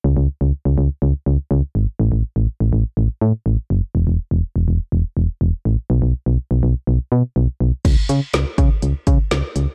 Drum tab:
CC |--------|--------|--------|--------|
HH |--------|--------|--------|--------|
SD |--------|--------|--------|--------|
BD |--------|--------|--------|--------|

CC |x-------|
HH |xxxxxxxx|
SD |--o---o-|
BD |o--o-o--|